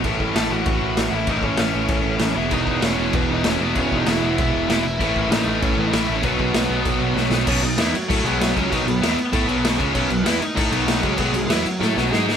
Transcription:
<<
  \new Staff \with { instrumentName = "Lead electric guitar" } { \time 4/4 \key a \lydian \tempo 4 = 194 r4 <a' a''>8 <fis' fis''>2 <e' e''>8 | <dis' dis''>8 <cis' cis''>2. <e' e''>8 | <dis' dis''>4 <cis' cis''>4 <b b'>8 <dis' dis''>8 <cis' cis''>8 <b b'>8 | <cis' cis''>8 <dis' dis''>8 <e' e''>4 <e' e''>4 <e' e''>8 <e' e''>8~ |
<e' e''>4 <dis' dis''>4 <cis' cis''>8 <b b'>16 <dis' dis''>16 <e' e''>8. <cis' cis''>16 | <b b'>2. r4 | \key b \major <cis' cis''>8 <dis' dis''>4 <fis fis'>8 <fis fis'>8 <gis gis'>8 <fis fis'>4 | <dis' dis''>8 <b b'>2. r8 |
<cis' cis''>8 <b b'>4 <dis' dis''>8 <dis' dis''>4 <dis' dis''>8 <fis fis'>8 | <gis gis'>4 <fis fis'>2~ <fis fis'>8 r8 | }
  \new Staff \with { instrumentName = "Distorted electric guitar" } { \time 4/4 \key a \lydian <a, e a cis' e'>2.~ <a, e a cis' e'>8 <a, e a cis' e'>8 | <a, e a cis' e'>2.~ <a, e a cis' e'>8 <e gis b e'>8~ | <e gis b e'>2. <e gis b e'>8 <e gis b e'>8~ | <e gis b e'>2. <e gis b e'>8 r8 |
<a, e a cis' e'>2.~ <a, e a cis' e'>8 <a, e a cis' e'>8 | <b, dis fis b dis'>2.~ <b, dis fis b dis'>8 <b, dis fis b dis'>8 | \key b \major <b, fis b>8 <b, fis>8 <e b e'>8 r8 <a e' a'>8 <b, fis b>4 <cis gis cis'>8 | <b, fis b>8 <b, fis>8 <e b e'>8 r8 <a e' a'>8 <b, fis b>4 <cis gis cis'>8 |
<b, fis b>8 <b, fis>8 <e b e'>8 r8 <a e' a'>8 <b, fis b>4 <cis gis cis'>8 | <b, fis b>8 <b, fis>8 <e b e'>8 r8 <a e' a'>8 <b, fis b>8 <gis dis' gis'>4 | }
  \new Staff \with { instrumentName = "Distorted electric guitar" } { \clef bass \time 4/4 \key a \lydian <a, e a>1 | <a, e a>2.~ <a, e a>8 <e, b, e>8~ | <e, b, e>2.~ <e, b, e>8 <e, b, e>8~ | <e, b, e>2.~ <e, b, e>8 r8 |
<a, e a>1 | <b, fis b>1 | \key b \major <b, fis b>8 <b, fis>8 <e b e'>8 r8 <a e' a'>8 <b, fis b>4 <cis gis cis'>8 | <b, fis b>8 <b, fis>8 <e b e'>8 r8 <a e' a'>8 <b, fis b>4 <cis gis cis'>8 |
<b, fis b>8 <b, fis>8 <e b e'>8 r8 <a e' a'>8 <b, fis b>4 <cis gis cis'>8 | <b, fis b>8 <b, fis>8 <e b e'>8 r8 <a e' a'>8 <b, fis b>8 <gis dis' gis'>4 | }
  \new Staff \with { instrumentName = "Distorted electric guitar" } { \clef bass \time 4/4 \key a \lydian r1 | r1 | <e, b, e>4. <e, b, e>4. <e, b, e>4 | <e, b, e>4. <e, b, e>4. <e, b, e>4 |
<a, e a>4. <a, e a>4. <a, e a>4 | <b, fis b>4. <b, fis b>4. <b, fis b>4 | \key b \major <b, fis b>8 <b, fis>8 <e b e'>8 r8 <a e' a'>8 <b, fis b>4 <cis gis cis'>8 | <b, fis b>8 <b, fis>8 <e b e'>8 r8 <a e' a'>8 <b, fis b>4 <cis gis cis'>8 |
<b, fis b>8 <b, fis>8 <e b e'>8 r8 <a e' a'>8 <b, fis b>4 <cis gis cis'>8 | <b, fis b>8 <b, fis>8 <e b e'>8 r8 <a e' a'>8 <b, fis b>8 <gis dis' gis'>4 | }
  \new Staff \with { instrumentName = "Picked electric bass" } { \clef bass \time 4/4 \key a \lydian a,,8 a,,8 a,,8 a,,8 a,,8 a,,8 a,,8 a,,8 | a,,8 a,,8 a,,8 a,,8 a,,8 a,,8 a,,8 e,,8 | e,,8 e,,8 e,,8 e,,8 e,,8 e,,8 e,,8 e,,8 | e,,8 e,,8 e,,8 e,,8 e,,8 e,,8 e,,8 e,,8 |
a,,8 a,,8 a,,8 a,,8 a,,8 a,,8 a,,8 a,,8 | b,,8 b,,8 b,,8 b,,8 b,,8 b,,8 b,,8 b,,8 | \key b \major b,,8 b,,8 e,8 r8 a,8 b,,4 cis,8 | b,,8 b,,8 e,8 r8 a,8 b,,4 cis,8 |
b,,8 b,,8 e,8 r8 a,8 b,,4 cis,8 | b,,8 b,,8 e,8 r8 a,8 b,,8 gis,4 | }
  \new DrumStaff \with { instrumentName = "Drums" } \drummode { \time 4/4 <cymc bd>8 bd8 <cymc sn>4 <cymc bd>4 <cymc sn>4 | <cymc bd>8 bd8 <cymc sn>4 <cymc bd>4 <cymc sn>4 | <cymc bd>8 bd8 <cymc sn>4 <cymc bd>4 <cymc sn>4 | <cymc bd>8 bd8 <cymc sn>4 <cymc bd>4 <cymc sn>4 |
<cymc bd>8 bd8 <cymc sn>4 <cymc bd>4 <cymc sn>4 | <cymc bd>8 bd8 <cymc sn>4 <cymc bd>4 sn8 sn8 | <cymc bd>8 cymc8 <cymc sn>8 cymc8 <cymc bd>8 cymc8 <cymc sn>8 <cymc bd>8 | <cymc bd>8 cymc8 <cymc sn>8 cymc8 <cymc bd>8 cymc8 <cymc sn>8 <cymc bd>8 |
<cymc bd>8 cymc8 <cymc sn>8 cymc8 <cymc bd>8 cymc8 <cymc sn>8 <cymc bd>8 | <cymc bd>8 cymc8 <cymc sn>8 cymc8 sn8 sn8 sn8 sn8 | }
>>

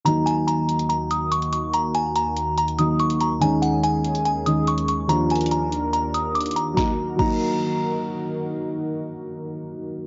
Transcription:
<<
  \new Staff \with { instrumentName = "Synth bell" } { \time 4/4 \key ees \minor \tempo 4 = 143 bes''8 aes''8 bes''4 bes''8 ees'''8 des'''8 des'''8 | bes''8 aes''8 bes''4 bes''8 ees'''8 des'''8 bes''8 | aes''8 ges''8 aes''4 aes''8 ees'''8 des'''8 des'''8 | bes''8 aes''8 bes''4 bes''8 ees'''8 d'''8 bes''8 |
bes''8 r8 bes''2 r4 | r1 | }
  \new Staff \with { instrumentName = "Analog synth pad" } { \time 4/4 \key ees \minor << { <ees bes ges'>1~ | <ees bes ges'>1 | <ees des' aes'>1 | <ees d' bes'>1 |
<ees ees' ges' bes'>1~ | <ees ees' ges' bes'>1 | } \\ { ees,1~ | ees,1~ | ees,1~ | ees,1 |
r1 | r1 | } >> }
  \new Staff \with { instrumentName = "Grand piano" } { \time 4/4 \key ees \minor <ees ges bes ees'>1~ | <ees ges bes ees'>2~ <ees ges bes ees'>8 <ees ges bes ees'>4. | <ees aes des' ees'>2~ <ees aes des' ees'>8 <ees aes des' ees'>4. | <ees, f bes d' f'>1 |
<ges bes ees' ges'>8 r8 <ges bes ees' ges'>2.~ | <ges bes ees' ges'>1 | }
  \new DrumStaff \with { instrumentName = "Drums" } \drummode { \time 4/4 hh8 hh8 hh8 hh16 hh16 hh8 hh8 hh16 hh16 hh8 | hh8 hh8 hh8 hh8 hh16 hh16 hh8 hh16 hh16 hh8 | hh8 hh8 hh8 hh16 hh16 hh8 hh8 hh16 hh16 hh8 | hh8 hh32 hh32 hh32 hh32 hh8 hh8 hh8 hh8 hh32 hh32 hh32 hh32 hh8 |
<bd sn>4 <cymc bd>4 r4 r4 | r4 r4 r4 r4 | }
>>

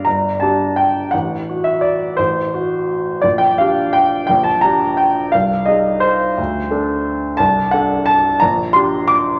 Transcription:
\new Staff \with { instrumentName = "Grand piano" } { \time 3/4 \key g \minor \tempo 4 = 172 << { bes''4 a''4 g''4 | fis''4. e''8 d''4 | c''2. | d''8 g''8 f''4 g''4 |
g''8 a''8 bes''4 g''4 | f''4 ees''4 c''4~ | c''2. | a''4 fis''4 a''4 |
bes''4 c'''4 d'''4 | } \\ { g,,4 <d' g'>2 | a,,4 fis'2 | a,,4 fis'2 | bes,,4 <d' g'>2 |
bes,,4 <d' g'>2 | c,4 <ees' aes'>2 | d,4 <d' a'>2 | c,4 <d' a'>2 |
bes,,4 <d' g'>2 | } >> }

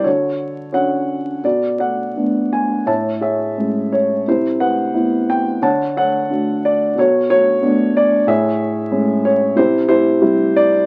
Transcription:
<<
  \new Staff \with { instrumentName = "Grand piano" } { \time 4/4 \key a \major \tempo 4 = 88 << { cis''4 fis''4 d''8 fis''4 gis''8 | a''8 e''4 cis''8 c''8 fis''4 g''8 | a''8 fis''4 d''8 cis''8 cis''4 d''8 | e''4. cis''8 c''8 c''4 d''8 | } \\ { <fis' a'>4 <a' cis''>4 <fis' a'>8 <a' d''>4. | <cis'' e''>8 <gis' cis''>4. <e' g'>8 b'4. | <cis'' fis''>8 <a' cis''>4. <fis' a'>8 <fis' a'>4. | <gis' cis''>2 <e' g'>8 <e' g'>4. | } >> }
  \new Staff \with { instrumentName = "Grand piano" } { \time 4/4 \key a \major d4 <cis' d' fis'>4 b,4 <a b d'>4 | a,4 <gis a cis'>4 c4 <b c' e'>4 | d4 <a d' fis'>4 b,4 <a b d'>4 | a,4 <gis a cis'>4 c4 <g c' e'>4 | }
>>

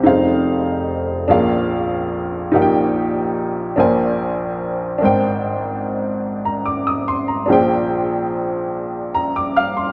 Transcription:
\new Staff \with { instrumentName = "Upright piano" } { \time 6/8 \key bes \mixolydian \tempo 4. = 48 << { r2. | r2. | r4. r16 bes''16 d'''16 ees'''16 c'''16 bes''16~ | bes''16 r4. r16 bes''16 d'''16 <f'' f'''>16 c'''16 | } \\ { <f,, f, ees' aes' c'' f''>4. <bes,, bes, d' aes' bes' f''>4. | <bes,, bes, ees' g' bes' ges'' g''>4. <bes,, bes, d' bes' c'' aes''>4. | <aes,, aes, d' bes' c'' g''>2. | <bes,, bes, d' aes' c'' g''>2. | } >> }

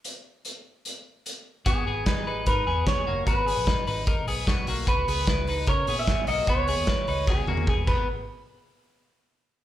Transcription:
<<
  \new Staff \with { instrumentName = "Clean electric guitar" } { \time 4/4 \key gis \minor \tempo 4 = 150 r1 | gis'2 b'4 cis''4 | b'4. r2 r8 | b'2 cis''8. e''8. dis''8 |
cis''2 gis'4. b'8 | r1 | }
  \new Staff \with { instrumentName = "Clean electric guitar" } { \time 4/4 \key gis \minor r1 | <b fis'>8 <b gis'>8 <dis' b'>8 <dis' b'>8 <dis' ais'>8 <b gis'>4 <ais fis'>8 | <b fis'>8 <b gis'>8 <dis' b'>8 <dis' b'>8 <dis' ais'>8 <b gis'>8 <b fis'>8 <ais fis'>8 | <b fis'>8 <b gis'>8 <e' b'>8 <dis' b'>8 <cis' ais'>8 <b gis'>4 <ais fis'>8 |
<b fis'>8 <b gis'>8 <e' b'>8 <dis' b'>8 <b gis'>8 <ais fis'>8 <b gis'>8 b8 | r1 | }
  \new Staff \with { instrumentName = "Fingered electric bass" } { \clef bass \time 4/4 \key gis \minor r1 | gis,,8 gis,,4. gis,8 e,8 dis,8 fis,,8 | gis,,8. ais,,8 r16 gis,,4 b,,4 b,,8 | cis,8 cis,4. cis8 ais,8 gis,8 b,,8 |
cis,8. dis,8. cis,4 e,4 gis,,8 | r1 | }
  \new DrumStaff \with { instrumentName = "Drums" } \drummode { \time 4/4 hh4 hh4 hh4 hh4 | <hh bd>4 <hh bd sn>4 <hh bd>4 <hh bd sn>4 | <hh bd>8 hho8 <hh bd sn>8 hho8 <hh bd>8 hho8 <hh bd sn>8 hho8 | <hh bd>8 hho8 <hh bd sn>8 hho8 <hh bd>8 hho8 <hh bd sn>8 hho8 |
<hh bd>8 hho8 <hh bd sn>8 hho8 <bd sn>8 tommh16 tommh16 <bd toml>8 <cymc bd>8 | r4 r4 r4 r4 | }
>>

